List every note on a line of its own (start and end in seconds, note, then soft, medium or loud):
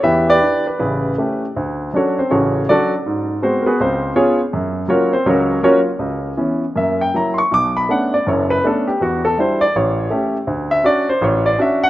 0.03 0.36 E2 medium
0.03 0.36 E3 medium
0.03 0.28 G4 medium
0.03 0.28 B4 medium
0.03 0.28 E5 medium
0.29 0.40 G4 medium
0.29 0.65 B4 medium
0.29 0.64 D5 loud
0.41 0.67 D4 soft
0.41 0.67 E4 soft
0.41 0.67 G4 medium
0.67 0.78 B4 medium
0.79 1.13 A1 medium
0.79 1.13 C#3 medium
0.79 1.52 E4 soft
0.79 1.17 G4 soft
0.79 1.39 B4 medium
1.18 1.44 A3 soft
1.18 1.44 C#4 soft
1.18 1.45 G4 medium
1.56 1.89 D2 medium
1.93 2.19 F#3 soft
1.93 2.19 C#4 soft
1.93 2.20 D4 medium
1.93 2.19 F#4 medium
1.93 2.19 A4 medium
1.93 2.19 C#5 medium
2.19 2.31 C4 medium
2.19 2.31 C5 medium
2.31 2.64 A1 medium
2.31 2.64 C#3 medium
2.31 2.66 C#4 medium
2.31 2.66 F#4 medium
2.31 2.66 A4 medium
2.31 2.66 C#5 medium
2.69 2.94 F#3 medium
2.69 2.94 C#4 soft
2.69 2.95 D4 medium
2.69 2.93 F#4 medium
2.69 2.93 A4 medium
2.69 2.92 D5 medium
3.06 3.38 G#2 medium
3.42 3.67 G#3 medium
3.42 3.65 B3 soft
3.42 3.66 C4 soft
3.42 3.65 F#4 medium
3.42 3.66 C5 medium
3.62 3.64 A#4 medium
3.66 3.79 B3 medium
3.66 3.79 F#4 medium
3.66 3.79 G#4 medium
3.66 3.79 B4 medium
3.81 4.11 C#2 medium
3.81 4.14 C4 soft
3.81 4.14 C5 medium
4.16 4.41 B3 medium
4.16 4.41 C#4 medium
4.16 4.39 F4 medium
4.16 4.39 G#4 medium
4.16 4.39 C#5 medium
4.53 4.84 F#2 medium
4.88 5.13 F#3 soft
4.88 5.14 A#3 medium
4.88 5.13 C#4 medium
4.88 5.14 F4 medium
4.88 5.12 F#4 medium
4.88 5.12 A#4 medium
4.88 5.12 C#5 medium
5.13 5.26 C4 medium
5.13 5.25 C5 medium
5.26 5.58 C#2 medium
5.26 5.58 F#3 medium
5.26 5.60 C#4 medium
5.26 5.61 F#4 medium
5.26 5.61 A#4 medium
5.26 5.60 C#5 medium
5.63 5.88 F#3 soft
5.63 5.88 A#3 soft
5.63 5.78 C#4 medium
5.63 5.88 F4 medium
5.63 5.78 F#4 medium
5.63 5.77 A#4 medium
5.63 5.78 C#5 medium
5.99 6.32 C#2 medium
6.37 6.63 E3 medium
6.37 6.63 B3 soft
6.37 6.64 C#4 medium
6.76 7.08 F#2 medium
6.76 7.08 A#3 medium
6.76 7.00 E5 medium
7.01 7.14 G5 medium
7.14 7.40 F#3 medium
7.14 7.40 A#3 soft
7.14 7.40 E4 medium
7.14 7.39 A#5 medium
7.34 7.36 C6 medium
7.38 7.51 C#6 medium
7.51 7.84 B1 medium
7.51 7.84 B2 medium
7.51 7.76 D6 loud
7.77 7.89 B5 medium
7.89 8.15 A3 soft
7.89 8.15 B3 soft
7.89 8.15 C#4 soft
7.89 8.15 D4 medium
7.89 8.14 F#5 medium
8.14 8.27 D5 medium
8.27 8.59 F#1 medium
8.27 8.59 F#2 medium
8.27 8.51 C#5 medium
8.50 8.63 B4 medium
8.64 8.89 A3 medium
8.64 8.89 B3 soft
8.64 8.90 C#4 medium
8.64 8.90 D4 medium
8.64 8.88 A4 medium
8.87 9.00 G4 medium
9.01 9.32 E2 medium
9.01 9.24 F#4 medium
9.25 9.37 A4 medium
9.38 9.62 G3 medium
9.38 9.63 D4 soft
9.38 9.63 E4 medium
9.38 9.62 C5 medium
9.61 9.74 D5 medium
9.76 10.07 A1 medium
9.76 10.32 C#5 medium
10.10 10.36 A3 medium
10.10 10.36 C#4 medium
10.10 10.36 G4 medium
10.47 10.80 D2 medium
10.71 10.84 E5 loud
10.83 11.09 C#4 medium
10.83 11.10 D4 medium
10.83 11.10 F#4 medium
10.83 11.08 D5 loud
11.09 11.22 C5 medium
11.22 11.54 A1 medium
11.22 11.46 C#5 medium
11.46 11.59 D5 medium
11.58 11.84 C#4 medium
11.58 11.84 D4 medium
11.58 11.84 F#4 medium
11.58 11.83 E5 medium
11.84 11.90 F#5 loud